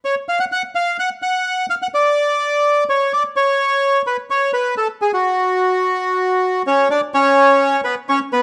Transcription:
0.05 0.15 C#5 medium
0.29 0.39 F5 medium
0.40 0.45 F#5 medium
0.52 0.62 F#5 medium
0.75 0.97 F5 medium
0.99 1.10 F#5 medium
1.22 1.66 F#5 medium
1.70 1.75 F5 medium
1.82 1.87 F#5 medium
1.94 2.84 D5 medium
2.89 3.12 C#5 medium
3.13 3.23 D5 medium
3.36 4.02 C#5 medium
4.07 4.17 B4 medium
4.30 4.51 C#5 medium
4.53 4.75 B4 medium
4.77 4.88 A4 medium
5.02 5.12 G#4 medium
5.13 6.62 F#4 medium
6.67 6.88 C#4 medium
6.67 6.89 C#5 medium
6.90 7.01 D4 medium
6.90 7.01 D5 medium
7.14 7.81 C#4 medium
7.14 7.81 C#5 medium
7.84 7.96 B3 medium
7.84 7.95 B4 medium
8.09 8.20 C#4 medium
8.09 8.19 C#5 medium
8.33 8.43 B3 medium
8.33 8.43 B4 medium

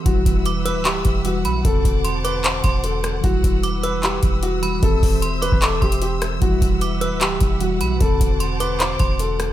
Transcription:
0.04 0.25 E1 loud
0.04 1.22 E3 medium
0.04 1.23 G3 medium
0.04 0.43 F#4 loud
0.04 1.63 B4 medium
0.04 1.63 E5 medium
0.04 4.79 F#5 medium
0.04 1.63 E6 medium
0.04 kick loud
0.04 closed hi-hat medium
0.09 1.24 E4 medium
0.26 0.77 E1 loud
0.26 kick loud
0.26 closed hi-hat medium
0.46 0.65 D6 medium
0.46 closed hi-hat medium
0.65 0.84 B4 medium
0.65 0.84 E6 medium
0.65 closed hi-hat medium
0.75 1.04 D1 medium
0.85 1.23 G4 medium
0.85 clap loud
0.85 closed hi-hat medium
1.05 1.46 E1 loud
1.05 kick medium
1.05 closed hi-hat medium
1.24 1.64 E3 medium
1.24 1.65 G3 medium
1.24 1.62 F#4 medium
1.24 1.66 F#4 medium
1.24 closed hi-hat medium
1.45 1.64 B1 loud
1.45 1.64 B5 medium
1.45 closed hi-hat medium
1.63 1.84 E1 loud
1.63 3.19 E2 medium
1.63 3.20 D3 medium
1.63 3.21 C4 medium
1.63 2.02 A4 loud
1.63 3.22 C5 medium
1.63 3.22 A5 medium
1.63 3.22 D6 medium
1.63 kick loud
1.63 closed hi-hat medium
1.68 3.22 F#4 medium
1.85 2.61 E1 loud
1.85 kick loud
1.85 closed hi-hat medium
2.05 2.23 C6 medium
2.05 closed hi-hat medium
2.24 2.43 B4 medium
2.24 2.62 D6 medium
2.24 closed hi-hat medium
2.44 2.82 C5 medium
2.44 clap loud
2.44 closed hi-hat medium
2.64 3.21 E1 loud
2.64 2.83 C6 medium
2.64 kick medium
2.64 closed hi-hat medium
2.84 3.21 A4 medium
2.84 closed hi-hat medium
3.04 cross-stick loud
3.04 closed hi-hat medium
3.21 3.43 E1 loud
3.21 4.59 E3 medium
3.21 4.60 G3 medium
3.21 3.61 F#4 loud
3.21 4.81 B4 medium
3.21 7.97 E6 medium
3.21 kick loud
3.21 closed hi-hat medium
3.26 4.61 E4 medium
3.44 4.20 E1 loud
3.44 kick loud
3.44 closed hi-hat medium
3.63 3.82 D6 medium
3.63 closed hi-hat medium
3.83 4.02 B4 medium
3.83 4.02 E6 medium
3.83 closed hi-hat medium
4.03 4.41 G4 medium
4.03 clap loud
4.03 closed hi-hat medium
4.23 4.80 E1 loud
4.23 kick medium
4.23 closed hi-hat medium
4.43 4.80 F#4 loud
4.43 closed hi-hat medium
4.62 4.79 E3 medium
4.62 4.83 G3 soft
4.62 4.83 F#4 medium
4.62 4.82 B5 medium
4.62 closed hi-hat medium
4.80 5.02 E1 loud
4.80 6.37 E3 medium
4.80 6.38 C4 medium
4.80 5.20 A4 loud
4.80 6.40 C5 medium
4.80 6.40 E5 medium
4.80 kick loud
4.80 closed hi-hat medium
4.85 6.40 G4 medium
5.03 5.50 E1 loud
5.03 kick loud
5.03 open hi-hat medium
5.22 5.41 C6 medium
5.22 closed hi-hat medium
5.42 5.61 B4 loud
5.42 5.79 D6 medium
5.42 closed hi-hat medium
5.52 5.81 E1 loud
5.52 kick medium
5.62 5.81 A4 medium
5.62 clap loud
5.62 closed hi-hat medium
5.82 6.39 E1 loud
5.82 6.00 G4 medium
5.82 6.01 C6 medium
5.82 kick medium
5.82 closed hi-hat soft
5.92 closed hi-hat medium
6.02 6.20 G4 medium
6.02 closed hi-hat medium
6.22 cross-stick loud
6.22 closed hi-hat medium
6.40 6.61 E1 loud
6.40 7.58 E3 medium
6.40 7.59 G3 medium
6.40 6.79 F#4 loud
6.40 7.99 B4 medium
6.40 7.99 E5 medium
6.40 9.53 F#5 medium
6.40 kick loud
6.40 closed hi-hat medium
6.45 7.60 E4 medium
6.62 7.13 E1 loud
6.62 kick loud
6.62 closed hi-hat loud
6.81 7.00 D6 medium
6.81 closed hi-hat medium
7.01 7.20 B4 medium
7.01 7.20 E6 medium
7.01 closed hi-hat medium
7.11 7.40 D1 medium
7.21 7.59 G4 medium
7.21 clap loud
7.21 closed hi-hat medium
7.41 7.82 E1 loud
7.41 kick medium
7.41 closed hi-hat medium
7.60 8.00 E3 medium
7.60 8.01 G3 medium
7.60 7.98 F#4 medium
7.60 8.01 F#4 medium
7.60 closed hi-hat medium
7.81 8.00 B1 loud
7.81 8.00 B5 medium
7.81 closed hi-hat medium
7.98 8.20 E1 loud
7.98 9.53 E2 medium
7.98 9.53 D3 medium
7.98 9.53 C4 medium
7.98 8.38 A4 loud
7.98 9.53 C5 medium
7.98 9.53 A5 medium
7.98 9.53 D6 medium
7.98 kick loud
7.98 closed hi-hat medium
8.03 9.53 F#4 medium
8.21 8.97 E1 loud
8.21 kick loud
8.21 closed hi-hat loud
8.40 8.59 C6 medium
8.40 closed hi-hat medium
8.60 8.78 B4 medium
8.60 8.98 D6 medium
8.60 closed hi-hat medium
8.80 9.17 C5 medium
8.80 clap loud
8.80 closed hi-hat medium
8.99 9.53 E1 loud
8.99 9.19 C6 medium
8.99 kick medium
8.99 closed hi-hat medium
9.19 9.53 A4 medium
9.19 closed hi-hat medium
9.40 cross-stick loud
9.40 closed hi-hat medium

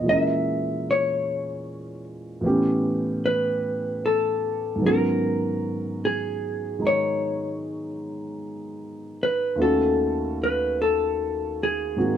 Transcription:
0.01 2.41 A#2 soft
0.01 2.41 E3 soft
0.06 2.44 G#3 soft
0.06 2.43 C#4 soft
0.06 0.90 E5 medium
0.11 2.47 A#4 soft
0.91 2.04 C#5 medium
2.41 4.80 A2 soft
2.41 4.81 E3 soft
2.41 4.81 B3 soft
2.41 4.82 C#4 soft
2.46 4.83 G4 medium
3.26 4.05 B4 medium
4.06 4.85 A4 medium
4.76 9.54 G#2 soft
4.76 6.77 D#3 soft
4.80 9.56 F#3 soft
4.80 9.58 B3 soft
4.84 9.58 C#4 soft
4.84 9.59 F#4 soft
4.84 6.05 A#4 medium
6.05 6.86 G#4 medium
6.79 9.56 D#3 soft
6.79 9.57 G#3 soft
6.79 9.58 D#4 soft
6.87 9.29 C#5 medium
9.23 9.60 B4 medium
9.56 11.95 D#2 soft
9.56 11.95 D#3 soft
9.56 11.97 A3 soft
9.56 11.97 C#4 soft
9.61 11.97 F#4 medium
9.61 10.37 A4 medium
10.44 10.80 B4 medium
10.82 11.63 A4 medium
11.63 12.17 G#4 medium
11.96 12.17 G#2 soft
11.96 12.17 D#3 soft
11.96 12.17 A#3 soft
11.96 12.17 C4 soft
11.96 12.17 F#4 soft

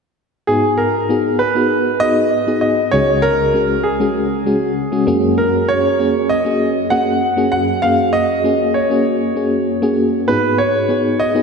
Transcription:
0.47 2.89 G#2 medium
0.47 0.96 B3 medium
0.47 0.96 D#4 medium
0.47 0.96 F#4 medium
0.47 0.79 G#4 medium
0.47 0.96 G#4 medium
0.78 1.41 A#4 medium
1.09 1.45 B3 medium
1.09 1.45 D#4 medium
1.09 1.46 F#4 medium
1.09 1.46 G#4 medium
1.39 2.03 B4 medium
1.55 1.91 B3 medium
1.55 1.91 D#4 medium
1.55 1.91 F#4 medium
1.55 1.91 G#4 medium
2.00 2.37 B3 medium
2.00 2.37 D#4 medium
2.00 2.37 F#4 medium
2.00 2.37 G#4 medium
2.00 2.58 D#5 loud
2.47 2.83 B3 medium
2.47 2.83 D#4 medium
2.47 2.83 F#4 medium
2.47 2.83 G#4 medium
2.61 2.90 D#5 medium
2.91 5.04 C#2 medium
2.91 5.04 C#3 medium
2.91 3.41 G#3 medium
2.91 3.41 C#4 medium
2.91 3.41 F#4 medium
2.91 3.41 G#4 medium
2.91 3.24 C#5 loud
3.22 3.86 A#4 loud
3.54 3.90 G#3 medium
3.54 3.90 C#4 medium
3.54 3.90 F#4 medium
3.54 3.91 G#4 medium
3.83 5.03 G#4 medium
4.00 4.36 G#3 medium
4.00 4.36 C#4 medium
4.00 4.36 F#4 medium
4.00 4.36 G#4 medium
4.46 4.82 G#3 medium
4.46 4.82 C#4 medium
4.46 4.82 F#4 medium
4.46 4.82 G#4 medium
4.92 5.07 G#3 medium
4.92 5.06 C#4 medium
4.92 5.06 F#4 medium
4.92 5.07 G#4 medium
5.07 7.48 F#2 medium
5.07 5.81 A#3 medium
5.07 5.81 C#4 medium
5.07 5.81 F#4 medium
5.07 5.81 G#4 loud
5.38 5.69 A#4 medium
5.69 6.26 C#5 loud
5.99 6.35 A#3 medium
5.99 6.35 C#4 medium
5.99 6.35 F#4 medium
5.99 6.35 G#4 medium
6.29 6.93 D#5 medium
6.45 6.81 A#3 medium
6.45 6.81 C#4 medium
6.45 6.81 F#4 medium
6.45 6.81 G#4 medium
6.90 7.27 A#3 medium
6.90 7.27 C#4 medium
6.90 7.27 F#4 medium
6.90 7.27 G#4 medium
6.90 7.50 F#5 loud
7.37 7.73 A#3 medium
7.37 7.73 C#4 medium
7.37 7.73 F#4 medium
7.37 7.73 G#4 medium
7.52 9.94 F#2 medium
7.52 7.84 F#5 medium
7.82 8.31 A#3 medium
7.82 8.31 C#4 medium
7.82 8.31 F#4 medium
7.82 8.31 G#4 medium
7.82 8.11 F5 loud
8.13 8.76 D#5 loud
8.44 8.80 A#3 medium
8.44 8.80 C#4 medium
8.44 8.80 F#4 medium
8.44 8.81 G#4 medium
8.74 9.93 C#5 medium
8.90 9.26 A#3 medium
8.90 9.26 C#4 medium
8.90 9.26 F#4 medium
8.90 9.26 G#4 medium
9.36 9.72 A#3 medium
9.36 9.72 C#4 medium
9.36 9.72 F#4 medium
9.36 9.72 G#4 medium
9.82 10.18 A#3 medium
9.82 10.18 C#4 medium
9.82 10.18 F#4 medium
9.82 10.18 G#4 medium
10.28 11.43 G#2 medium
10.28 10.76 B3 medium
10.28 10.76 D#4 medium
10.28 10.76 F#4 medium
10.28 10.76 G#4 medium
10.28 10.56 B4 medium
10.58 11.21 C#5 medium
10.89 11.25 B3 medium
10.89 11.25 D#4 medium
10.89 11.25 F#4 medium
10.89 11.25 G#4 medium
11.20 11.43 D#5 medium
11.35 11.43 B3 medium
11.35 11.43 D#4 medium
11.35 11.43 F#4 medium
11.35 11.43 G#4 medium

